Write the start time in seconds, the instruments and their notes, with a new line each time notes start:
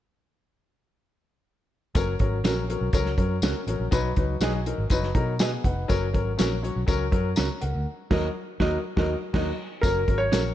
1.95 fingered electric bass F#1, upright piano F#3 C#4 A#4, kick, closed hi-hat, tambourine
2.19 fingered electric bass G#1, upright piano F#3 C#4 A#4, kick, closed hi-hat
2.44 fingered electric bass A#1, upright piano F#3 C#4 A#4, clean electric guitar C#4 F#4 A#4, snare, closed hi-hat, tambourine
2.69 upright piano F#3 C#4 A#4, closed hi-hat
2.81 fingered electric bass B1
2.93 fingered electric bass C#2, upright piano F#3 C#4 A#4, kick, closed hi-hat, tambourine
3.06 snare
3.17 fingered electric bass F#2, upright piano F#3 C#4 A#4, kick, closed hi-hat
3.42 fingered electric bass C#2, upright piano F#3 C#4 A#4, clean electric guitar C#4 F#4 A#4, snare, closed hi-hat, tambourine
3.67 fingered electric bass A1, upright piano F#3 C#4 A#4, closed hi-hat
3.80 fingered electric bass A#1
3.91 fingered electric bass B1, upright piano F#3 D#4 B4, kick, closed hi-hat, tambourine
4.16 fingered electric bass C#2, upright piano F#3 D#4 B4, kick, closed hi-hat
4.40 fingered electric bass B1, upright piano F#3 D#4 G#4, clean electric guitar F#4 B4 D#5, snare, closed hi-hat, tambourine
4.66 upright piano F#3 D#4 A#4, closed hi-hat
4.78 fingered electric bass G#1
4.90 fingered electric bass F#1, upright piano F#3 D#4 B4, kick, closed hi-hat, tambourine
5.03 snare
5.15 fingered electric bass B2, upright piano F#3 D#4 A#4 A#5, kick, closed hi-hat
5.39 upright piano B3 G#4 G#5, clean electric guitar F#4 B4 D#5, snare, closed hi-hat, tambourine
5.64 fingered electric bass F1, upright piano D#4 B4 F#5, kick, closed hi-hat
5.88 fingered electric bass F#1, upright piano F#3 C#4 A#4, kick, closed hi-hat, tambourine
6.13 fingered electric bass G#1, upright piano F#3 C#4 A#4, kick, closed hi-hat
6.38 fingered electric bass A#1, upright piano F#3 C#4 A#4, clean electric guitar C#4 F#4 A#4, snare, closed hi-hat, tambourine
6.62 upright piano F#3 C#4 C#5, closed hi-hat
6.76 fingered electric bass B1
6.87 fingered electric bass C#2, upright piano F#3 C#4 A#4, kick, closed hi-hat, tambourine
7.11 fingered electric bass F#2, upright piano F#3 C#4 A#4, kick, closed hi-hat
7.36 fingered electric bass C#2, clean electric guitar C#4 F#4 A#4, upright piano C#5 A#5, snare, closed hi-hat, tambourine
7.61 fingered electric bass C#2, upright piano A#4 F#5, closed hi-hat
7.75 fingered electric bass D2
8.11 fingered electric bass D#2, upright piano F#3 D#4 A#4, clean electric guitar F#4 A#4 D#5, kick, snare, crash
8.60 fingered electric bass D#2, upright piano F#3 D#4 A#4, clean electric guitar F#4 A#4 D#5, kick, snare
8.96 fingered electric bass D#2, upright piano F#3 D#4 A#4, clean electric guitar F#4 A#4 D#5, kick, snare
9.33 fingered electric bass D#2, upright piano F#3 D#4, clean electric guitar F#4 A#4 D#5, kick, snare, crash
9.81 fingered electric bass F#1, upright piano F#3 C#4 A#4, grand piano A#4, kick, closed hi-hat, tambourine
10.08 fingered electric bass G#1, upright piano F#3 C#4 A#4, kick, closed hi-hat
10.18 grand piano C#5
10.32 fingered electric bass A#1, upright piano F#3 C#4 A#4, clean electric guitar C#4 F#4 A#4, snare, closed hi-hat, tambourine